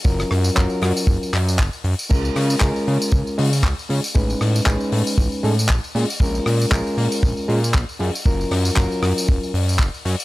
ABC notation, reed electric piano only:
X:1
M:4/4
L:1/8
Q:"Swing 16ths" 1/4=117
K:Gblyd
V:1 name="Reed electric piano"
[G,DFB]2 [G,DFB]3 z3 | [A,DFB]2 [A,DFB]3 [A,DFA] z [A,DFA] | [^G,^C^D=B]2 [G,CDB]3 [G,CD=A] z [_A,_DF_A] | [A,DFB]2 [A,DFB]3 [A,DFA] z [G,DFA] |
[G,DFB]2 [G,DFB]3 z3 |]